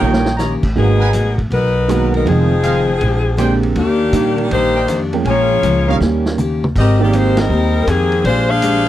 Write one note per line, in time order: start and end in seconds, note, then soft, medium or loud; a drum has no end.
0.00 0.59 A#1 medium
0.00 0.23 D#3 soft
0.00 0.28 D#3 medium
0.00 0.23 G3 soft
0.00 0.29 A#3 medium
0.00 0.23 A#3 soft
0.00 0.28 A#3 soft
0.00 0.24 C#4 soft
0.00 0.28 C#4 medium
0.00 0.29 D#4 medium
0.00 0.24 F4 medium
0.00 0.29 G4 medium
0.00 0.36 A#4 medium
0.00 0.29 C#5 loud
0.00 0.36 C#5 medium
0.00 0.36 D#5 medium
0.00 0.36 G5 loud
0.04 0.29 G4 medium
0.13 snare medium
0.25 snare medium
0.37 0.65 D#3 medium
0.37 0.65 A#3 medium
0.37 0.66 C#4 medium
0.37 0.66 G4 medium
0.37 0.55 A#4 medium
0.37 0.55 C#5 medium
0.37 0.55 D#5 medium
0.37 0.55 A#5 medium
0.37 snare medium
0.37 hi-hat pedal medium
0.63 0.75 A1 medium
0.63 kick medium
0.63 crash medium
0.76 1.11 G#1 medium
0.76 0.98 D#3 medium
0.76 1.36 F#3 medium
0.76 0.98 G#3 medium
0.76 1.02 G#3 soft
0.76 0.99 A#3 medium
0.76 0.99 B3 medium
0.76 1.03 B3 soft
0.76 1.36 B3 medium
0.76 1.35 D#4 medium
0.76 0.99 F#4 medium
0.76 1.03 F#4 medium
0.76 1.36 G#4 medium
0.76 1.04 A#4 medium
1.00 1.09 A#4 medium
1.00 1.09 B4 medium
1.00 1.09 F#5 medium
1.00 1.09 G#5 loud
1.13 1.49 A1 medium
1.13 1.40 G#3 medium
1.13 1.40 B3 medium
1.13 1.40 F#4 medium
1.13 1.41 A#4 medium
1.13 hi-hat pedal medium
1.13 ride medium
1.38 kick medium
1.38 ride soft
1.50 2.22 B1 medium
1.50 2.11 F#3 medium
1.50 1.77 G#3 soft
1.50 1.77 B3 soft
1.50 2.10 D#4 medium
1.50 1.78 F#4 soft
1.50 1.78 A#4 soft
1.50 2.10 A#4 medium
1.50 2.10 B4 medium
1.50 ride medium
1.88 2.24 D#3 medium
1.88 2.25 G#3 medium
1.88 2.15 G#3 medium
1.88 2.26 A#3 medium
1.88 2.27 B3 medium
1.88 2.15 B3 medium
1.88 2.27 F#4 medium
1.88 2.16 F#4 medium
1.88 2.16 A#4 medium
1.88 cross-stick medium
1.88 hi-hat pedal medium
1.88 ride medium
2.14 2.26 F#3 medium
2.14 2.27 B3 medium
2.14 2.27 D#4 medium
2.14 2.26 A#4 medium
2.14 ride soft
2.25 2.97 F1 medium
2.25 2.52 F2 soft
2.25 2.48 D#3 medium
2.25 2.53 D#3 soft
2.25 2.48 F3 soft
2.25 3.60 F3 medium
2.25 2.49 G#3 soft
2.25 2.53 G#3 medium
2.25 2.49 C4 soft
2.25 3.60 C4 medium
2.25 2.54 C4 soft
2.25 2.98 D#4 medium
2.25 2.49 F4 medium
2.25 3.60 G#4 medium
2.25 ride medium
2.63 2.90 F2 medium
2.63 2.90 D#3 medium
2.63 2.91 G#3 medium
2.63 2.91 C4 medium
2.63 2.80 G#4 medium
2.63 2.80 C5 medium
2.63 2.80 D#5 medium
2.63 2.80 F5 medium
2.63 hi-hat pedal medium
2.63 ride medium
3.00 3.72 A#1 medium
3.00 3.27 A#2 medium
3.00 3.27 G#3 medium
3.00 3.28 D4 medium
3.00 3.28 G4 medium
3.00 ride medium
3.37 3.64 A#2 medium
3.37 3.76 D3 medium
3.37 3.64 G#3 medium
3.37 3.76 G#3 medium
3.37 3.76 A#3 medium
3.37 3.76 C4 medium
3.37 3.65 D4 medium
3.37 3.65 G4 medium
3.37 3.77 G4 medium
3.37 3.55 G#4 medium
3.37 3.55 C5 medium
3.37 3.55 D5 medium
3.37 3.55 G5 medium
3.37 cross-stick medium
3.37 hi-hat pedal medium
3.37 ride medium
3.63 ride soft
3.75 4.11 D#2 medium
3.75 4.02 D#3 soft
3.75 4.47 D#3 medium
3.75 4.02 A#3 soft
3.75 4.47 A#3 medium
3.75 4.47 D4 medium
3.75 4.03 D4 medium
3.75 4.48 G4 medium
3.75 4.03 G4 medium
3.75 ride medium
4.12 4.48 A#2 medium
4.12 4.70 D#3 medium
4.12 4.39 D#3 medium
4.12 4.71 G3 medium
4.12 4.71 A#3 soft
4.12 4.40 A#3 medium
4.12 4.71 D4 medium
4.12 4.40 D4 medium
4.12 4.71 G4 medium
4.12 4.40 G4 medium
4.12 hi-hat pedal medium
4.12 ride medium
4.38 ride soft
4.50 4.86 A#1 medium
4.50 4.76 D#3 soft
4.50 4.77 A#3 soft
4.50 5.00 A#3 medium
4.50 4.77 D4 soft
4.50 4.99 D#4 medium
4.50 4.78 G4 soft
4.50 5.00 G4 medium
4.50 5.00 C5 loud
4.50 ride medium
4.75 4.84 A#4 medium
4.75 4.84 D5 medium
4.75 4.84 D#5 medium
4.75 4.84 G5 medium
4.87 5.23 F2 medium
4.87 5.14 D#3 medium
4.87 5.14 A#3 medium
4.87 5.15 D4 medium
4.87 5.15 G4 medium
4.87 cross-stick medium
4.87 hi-hat pedal medium
4.87 ride medium
5.13 5.61 F3 medium
5.13 5.61 G#3 medium
5.13 5.61 A#3 medium
5.13 5.61 C#4 medium
5.13 5.61 G5 medium
5.13 ride soft
5.25 5.60 A#1 medium
5.25 5.51 A#2 soft
5.25 5.52 F3 soft
5.25 5.52 G#3 soft
5.25 5.98 A#3 medium
5.25 5.52 C#4 medium
5.25 5.97 F4 medium
5.25 5.98 G#4 medium
5.25 5.42 A#4 medium
5.25 5.43 C#5 medium
5.25 5.98 C#5 loud
5.25 5.42 F5 medium
5.25 5.42 G#5 medium
5.25 ride medium
5.63 5.98 C#2 medium
5.63 5.89 A#2 medium
5.63 5.89 F3 medium
5.63 5.89 G#3 medium
5.63 5.90 C#4 medium
5.63 hi-hat pedal medium
5.63 ride medium
5.87 6.36 D#3 medium
5.87 6.36 G3 medium
5.87 6.36 A#3 medium
5.87 6.36 C#4 medium
5.87 6.36 G4 medium
5.87 5.96 A#4 medium
5.87 5.96 C#5 medium
5.87 5.96 D#5 medium
5.87 5.96 F5 medium
6.00 6.71 D#2 medium
6.00 6.26 D#3 soft
6.00 6.27 A#3 soft
6.00 6.27 C#4 medium
6.00 6.28 G4 medium
6.00 snare soft
6.26 snare medium
6.38 6.64 D#3 medium
6.38 6.64 A#3 medium
6.38 6.65 C#4 medium
6.38 6.65 G4 medium
6.38 hi-hat pedal medium
6.38 mid tom medium
6.64 mid tom medium
6.75 7.46 G#1 medium
6.75 7.01 G#3 soft
6.75 7.02 C4 soft
6.75 7.00 C4 medium
6.75 7.02 G4 soft
6.75 7.00 G4 medium
6.75 7.03 A#4 medium
6.75 7.00 A#4 medium
6.75 7.00 D#5 medium
6.75 kick medium
6.75 crash medium
6.99 7.47 D#3 medium
6.99 7.47 G#3 medium
6.99 7.48 A#3 medium
6.99 7.13 A#3 medium
6.99 7.48 C4 medium
6.99 7.13 D#4 medium
6.99 7.48 G4 medium
6.99 7.13 G4 medium
6.99 7.13 D5 medium
7.13 7.39 G#3 medium
7.13 7.39 A#3 medium
7.13 7.39 C4 medium
7.13 7.37 D#4 medium
7.13 7.39 G4 medium
7.13 7.39 A#4 medium
7.13 7.39 C5 medium
7.13 hi-hat pedal medium
7.13 ride medium
7.37 7.88 G3 medium
7.37 7.88 C4 medium
7.37 7.88 D#4 medium
7.37 7.88 A#4 medium
7.37 snare medium
7.37 ride medium
7.50 7.85 D#2 medium
7.50 7.76 G#3 soft
7.50 7.77 C4 soft
7.50 7.77 G4 medium
7.50 7.77 A#4 medium
7.87 8.22 F2 medium
7.87 8.25 D#3 medium
7.87 8.13 G#3 medium
7.87 8.25 A#3 medium
7.87 8.14 C4 medium
7.87 8.25 C4 medium
7.87 8.14 G4 medium
7.87 8.26 G#4 loud
7.87 8.14 A#4 medium
7.87 cross-stick medium
7.87 hi-hat pedal medium
7.87 ride medium
8.12 ride soft
8.24 8.88 A#1 medium
8.24 8.50 A#2 medium
8.24 8.51 G#3 soft
8.24 8.48 G#3 medium
8.24 8.48 D4 medium
8.24 8.51 D4 medium
8.24 8.48 F4 medium
8.24 8.52 G4 soft
8.24 8.48 C5 loud
8.24 ride medium
8.49 8.88 D4 medium
8.49 8.88 G#4 medium
8.49 8.88 C5 medium
8.49 8.88 F5 loud
8.62 8.88 A#2 medium
8.62 8.88 G#3 medium
8.62 8.88 D4 medium
8.62 8.88 G4 medium
8.62 hi-hat pedal medium
8.62 ride medium